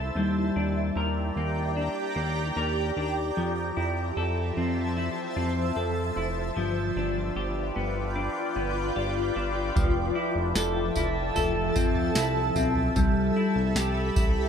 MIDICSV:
0, 0, Header, 1, 6, 480
1, 0, Start_track
1, 0, Tempo, 800000
1, 100, Time_signature, 4, 2, 24, 8
1, 8692, End_track
2, 0, Start_track
2, 0, Title_t, "Synth texture"
2, 0, Program_c, 0, 99
2, 6160, Note_on_c, 0, 76, 72
2, 6193, Note_on_c, 0, 79, 53
2, 7063, Note_off_c, 0, 76, 0
2, 7080, Note_off_c, 0, 79, 0
2, 8692, End_track
3, 0, Start_track
3, 0, Title_t, "Ambient pad"
3, 0, Program_c, 1, 92
3, 0, Note_on_c, 1, 64, 80
3, 0, Note_on_c, 1, 72, 73
3, 0, Note_on_c, 1, 76, 73
3, 0, Note_on_c, 1, 81, 84
3, 78, Note_off_c, 1, 64, 0
3, 79, Note_off_c, 1, 81, 0
3, 80, Note_off_c, 1, 72, 0
3, 80, Note_off_c, 1, 76, 0
3, 99, Note_on_c, 1, 79, 70
3, 102, Note_on_c, 1, 67, 76
3, 102, Note_on_c, 1, 82, 78
3, 104, Note_on_c, 1, 74, 71
3, 2000, Note_off_c, 1, 79, 0
3, 2001, Note_off_c, 1, 82, 0
3, 2002, Note_off_c, 1, 67, 0
3, 2003, Note_off_c, 1, 74, 0
3, 2018, Note_on_c, 1, 72, 70
3, 2021, Note_on_c, 1, 53, 75
3, 2022, Note_on_c, 1, 81, 86
3, 2023, Note_on_c, 1, 76, 74
3, 3920, Note_off_c, 1, 72, 0
3, 3921, Note_off_c, 1, 53, 0
3, 3921, Note_off_c, 1, 81, 0
3, 3922, Note_off_c, 1, 76, 0
3, 3929, Note_on_c, 1, 74, 65
3, 3930, Note_on_c, 1, 65, 80
3, 3931, Note_on_c, 1, 79, 91
3, 3935, Note_on_c, 1, 71, 70
3, 5835, Note_off_c, 1, 65, 0
3, 5835, Note_off_c, 1, 74, 0
3, 5836, Note_off_c, 1, 79, 0
3, 5838, Note_off_c, 1, 71, 0
3, 5853, Note_on_c, 1, 76, 80
3, 5854, Note_on_c, 1, 69, 69
3, 5856, Note_on_c, 1, 53, 83
3, 5856, Note_on_c, 1, 81, 91
3, 7758, Note_off_c, 1, 81, 0
3, 7759, Note_off_c, 1, 53, 0
3, 7774, Note_on_c, 1, 67, 89
3, 7778, Note_on_c, 1, 83, 84
3, 8692, Note_off_c, 1, 67, 0
3, 8692, Note_off_c, 1, 69, 0
3, 8692, Note_off_c, 1, 76, 0
3, 8692, Note_off_c, 1, 83, 0
3, 8692, End_track
4, 0, Start_track
4, 0, Title_t, "Clean electric guitar"
4, 0, Program_c, 2, 27
4, 0, Note_on_c, 2, 52, 66
4, 0, Note_on_c, 2, 60, 49
4, 0, Note_on_c, 2, 64, 49
4, 0, Note_on_c, 2, 69, 63
4, 97, Note_off_c, 2, 52, 0
4, 100, Note_on_c, 2, 55, 64
4, 147, Note_off_c, 2, 60, 0
4, 147, Note_off_c, 2, 64, 0
4, 148, Note_off_c, 2, 69, 0
4, 337, Note_on_c, 2, 62, 50
4, 581, Note_on_c, 2, 70, 52
4, 822, Note_on_c, 2, 58, 48
4, 1053, Note_off_c, 2, 62, 0
4, 1060, Note_on_c, 2, 62, 52
4, 1290, Note_off_c, 2, 58, 0
4, 1297, Note_on_c, 2, 58, 48
4, 1535, Note_off_c, 2, 70, 0
4, 1542, Note_on_c, 2, 70, 58
4, 1776, Note_off_c, 2, 62, 0
4, 1783, Note_on_c, 2, 62, 45
4, 2020, Note_off_c, 2, 55, 0
4, 2023, Note_on_c, 2, 53, 69
4, 2066, Note_off_c, 2, 58, 0
4, 2069, Note_off_c, 2, 62, 0
4, 2069, Note_off_c, 2, 70, 0
4, 2260, Note_on_c, 2, 64, 53
4, 2503, Note_on_c, 2, 69, 55
4, 2745, Note_on_c, 2, 60, 47
4, 2975, Note_off_c, 2, 64, 0
4, 2982, Note_on_c, 2, 64, 56
4, 3213, Note_off_c, 2, 60, 0
4, 3220, Note_on_c, 2, 60, 55
4, 3453, Note_off_c, 2, 69, 0
4, 3460, Note_on_c, 2, 69, 65
4, 3694, Note_off_c, 2, 64, 0
4, 3702, Note_on_c, 2, 64, 47
4, 3937, Note_off_c, 2, 53, 0
4, 3939, Note_on_c, 2, 53, 75
4, 3988, Note_off_c, 2, 60, 0
4, 3988, Note_off_c, 2, 69, 0
4, 3989, Note_off_c, 2, 64, 0
4, 4182, Note_on_c, 2, 62, 52
4, 4419, Note_on_c, 2, 67, 59
4, 4656, Note_on_c, 2, 59, 47
4, 4886, Note_off_c, 2, 62, 0
4, 4894, Note_on_c, 2, 62, 57
4, 5129, Note_off_c, 2, 59, 0
4, 5137, Note_on_c, 2, 59, 53
4, 5369, Note_off_c, 2, 67, 0
4, 5376, Note_on_c, 2, 67, 59
4, 5610, Note_off_c, 2, 62, 0
4, 5617, Note_on_c, 2, 62, 44
4, 5852, Note_off_c, 2, 53, 0
4, 5854, Note_on_c, 2, 53, 78
4, 5906, Note_off_c, 2, 59, 0
4, 5906, Note_off_c, 2, 62, 0
4, 5906, Note_off_c, 2, 67, 0
4, 6092, Note_on_c, 2, 64, 55
4, 6334, Note_on_c, 2, 69, 65
4, 6577, Note_off_c, 2, 64, 0
4, 6579, Note_on_c, 2, 64, 57
4, 6809, Note_off_c, 2, 69, 0
4, 6816, Note_on_c, 2, 69, 78
4, 7055, Note_on_c, 2, 60, 64
4, 7296, Note_off_c, 2, 64, 0
4, 7298, Note_on_c, 2, 64, 65
4, 7533, Note_off_c, 2, 60, 0
4, 7536, Note_on_c, 2, 60, 52
4, 7777, Note_off_c, 2, 53, 0
4, 7779, Note_on_c, 2, 55, 78
4, 7826, Note_off_c, 2, 69, 0
4, 8016, Note_off_c, 2, 64, 0
4, 8019, Note_on_c, 2, 64, 59
4, 8258, Note_on_c, 2, 67, 69
4, 8497, Note_off_c, 2, 64, 0
4, 8499, Note_on_c, 2, 64, 50
4, 8692, Note_off_c, 2, 55, 0
4, 8692, Note_off_c, 2, 60, 0
4, 8692, Note_off_c, 2, 64, 0
4, 8692, Note_off_c, 2, 67, 0
4, 8692, End_track
5, 0, Start_track
5, 0, Title_t, "Analog synth bass"
5, 0, Program_c, 3, 38
5, 0, Note_on_c, 3, 36, 90
5, 68, Note_off_c, 3, 36, 0
5, 93, Note_on_c, 3, 39, 84
5, 307, Note_off_c, 3, 39, 0
5, 336, Note_on_c, 3, 39, 93
5, 549, Note_off_c, 3, 39, 0
5, 575, Note_on_c, 3, 39, 84
5, 788, Note_off_c, 3, 39, 0
5, 816, Note_on_c, 3, 39, 87
5, 1134, Note_off_c, 3, 39, 0
5, 1295, Note_on_c, 3, 39, 83
5, 1509, Note_off_c, 3, 39, 0
5, 1538, Note_on_c, 3, 39, 96
5, 1750, Note_off_c, 3, 39, 0
5, 1778, Note_on_c, 3, 39, 73
5, 1990, Note_off_c, 3, 39, 0
5, 2021, Note_on_c, 3, 41, 84
5, 2232, Note_off_c, 3, 41, 0
5, 2262, Note_on_c, 3, 41, 93
5, 2472, Note_off_c, 3, 41, 0
5, 2500, Note_on_c, 3, 41, 90
5, 2711, Note_off_c, 3, 41, 0
5, 2742, Note_on_c, 3, 41, 93
5, 3058, Note_off_c, 3, 41, 0
5, 3219, Note_on_c, 3, 41, 85
5, 3430, Note_off_c, 3, 41, 0
5, 3457, Note_on_c, 3, 41, 93
5, 3669, Note_off_c, 3, 41, 0
5, 3697, Note_on_c, 3, 29, 77
5, 3909, Note_off_c, 3, 29, 0
5, 3939, Note_on_c, 3, 31, 82
5, 4151, Note_off_c, 3, 31, 0
5, 4176, Note_on_c, 3, 31, 97
5, 4389, Note_off_c, 3, 31, 0
5, 4414, Note_on_c, 3, 31, 78
5, 4628, Note_off_c, 3, 31, 0
5, 4657, Note_on_c, 3, 31, 83
5, 4975, Note_off_c, 3, 31, 0
5, 5136, Note_on_c, 3, 31, 88
5, 5349, Note_off_c, 3, 31, 0
5, 5377, Note_on_c, 3, 31, 89
5, 5589, Note_off_c, 3, 31, 0
5, 5616, Note_on_c, 3, 31, 75
5, 5829, Note_off_c, 3, 31, 0
5, 5855, Note_on_c, 3, 29, 100
5, 6068, Note_off_c, 3, 29, 0
5, 6212, Note_on_c, 3, 29, 84
5, 6321, Note_off_c, 3, 29, 0
5, 6332, Note_on_c, 3, 29, 91
5, 6546, Note_off_c, 3, 29, 0
5, 6576, Note_on_c, 3, 29, 95
5, 6789, Note_off_c, 3, 29, 0
5, 6814, Note_on_c, 3, 29, 93
5, 7028, Note_off_c, 3, 29, 0
5, 7055, Note_on_c, 3, 41, 81
5, 7268, Note_off_c, 3, 41, 0
5, 7295, Note_on_c, 3, 36, 96
5, 7508, Note_off_c, 3, 36, 0
5, 7533, Note_on_c, 3, 35, 89
5, 7747, Note_off_c, 3, 35, 0
5, 7777, Note_on_c, 3, 36, 93
5, 7989, Note_off_c, 3, 36, 0
5, 8133, Note_on_c, 3, 36, 89
5, 8242, Note_off_c, 3, 36, 0
5, 8252, Note_on_c, 3, 36, 99
5, 8466, Note_off_c, 3, 36, 0
5, 8497, Note_on_c, 3, 36, 100
5, 8692, Note_off_c, 3, 36, 0
5, 8692, End_track
6, 0, Start_track
6, 0, Title_t, "Drums"
6, 5858, Note_on_c, 9, 36, 93
6, 5859, Note_on_c, 9, 43, 95
6, 5859, Note_on_c, 9, 54, 57
6, 5918, Note_off_c, 9, 36, 0
6, 5919, Note_off_c, 9, 43, 0
6, 5919, Note_off_c, 9, 54, 0
6, 6333, Note_on_c, 9, 38, 107
6, 6334, Note_on_c, 9, 54, 94
6, 6393, Note_off_c, 9, 38, 0
6, 6394, Note_off_c, 9, 54, 0
6, 6573, Note_on_c, 9, 43, 65
6, 6573, Note_on_c, 9, 54, 61
6, 6633, Note_off_c, 9, 43, 0
6, 6633, Note_off_c, 9, 54, 0
6, 6814, Note_on_c, 9, 43, 66
6, 6814, Note_on_c, 9, 54, 58
6, 6874, Note_off_c, 9, 43, 0
6, 6874, Note_off_c, 9, 54, 0
6, 7054, Note_on_c, 9, 54, 65
6, 7056, Note_on_c, 9, 36, 84
6, 7114, Note_off_c, 9, 54, 0
6, 7116, Note_off_c, 9, 36, 0
6, 7172, Note_on_c, 9, 43, 60
6, 7232, Note_off_c, 9, 43, 0
6, 7292, Note_on_c, 9, 54, 98
6, 7293, Note_on_c, 9, 38, 116
6, 7352, Note_off_c, 9, 54, 0
6, 7353, Note_off_c, 9, 38, 0
6, 7534, Note_on_c, 9, 43, 62
6, 7534, Note_on_c, 9, 54, 59
6, 7594, Note_off_c, 9, 43, 0
6, 7594, Note_off_c, 9, 54, 0
6, 7653, Note_on_c, 9, 43, 70
6, 7713, Note_off_c, 9, 43, 0
6, 7776, Note_on_c, 9, 43, 96
6, 7776, Note_on_c, 9, 54, 59
6, 7778, Note_on_c, 9, 36, 111
6, 7836, Note_off_c, 9, 43, 0
6, 7836, Note_off_c, 9, 54, 0
6, 7838, Note_off_c, 9, 36, 0
6, 8255, Note_on_c, 9, 38, 115
6, 8257, Note_on_c, 9, 54, 96
6, 8315, Note_off_c, 9, 38, 0
6, 8317, Note_off_c, 9, 54, 0
6, 8498, Note_on_c, 9, 43, 65
6, 8498, Note_on_c, 9, 54, 67
6, 8499, Note_on_c, 9, 36, 99
6, 8558, Note_off_c, 9, 43, 0
6, 8558, Note_off_c, 9, 54, 0
6, 8559, Note_off_c, 9, 36, 0
6, 8692, End_track
0, 0, End_of_file